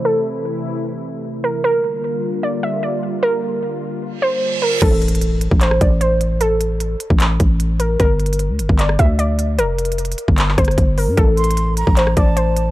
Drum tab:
CC |------------------------------------------------|------------------------------------------------|------------------------------------------------|x-----------------------------------------------|
HH |------------------------------------------------|------------------------------------------------|------------------------------------------------|x-----x-x-x-x-----x-----x-----x-----x-----x-----|
CP |------------------------------------------------|------------------------------------------------|------------------------------------------------|------------------------x-----------------------|
SD |------------------------------------------------|------------------------------------------------|------------------------------------------------|---------------------------r--------------------|
BD |------------------------------------------------|------------------------------------------------|------------------------------------------------|o--------------------o--------o-----------------|

CC |------------------------------------------------|------------------------------------------------|------------------------------------------------|------------------------------------------------|
HH |x-----x-----x-----x-----x-----x-----x-----x-----|x-----x-x-x-x-----x-----x-----x-----x-----x-----|x-----x-x-x-x-x-x-x-----x-----x-x-x-x-----o-----|x-----x-x-x-x-----x-----x-----x-----x-----x-----|
CP |------------------------x-----------------------|------------------------x-----------------------|------------------------x--x--------------------|------------------------x-----------------------|
SD |------------------------------------------------|---------------------------r--------------------|------------------------------r--r--------------|---------------------------r--------------------|
BD |---------------------o--------o-----------------|o--------------------o--------o-----------------|---------------------o--------o-----o-----------|o--------------------o--------o-----------------|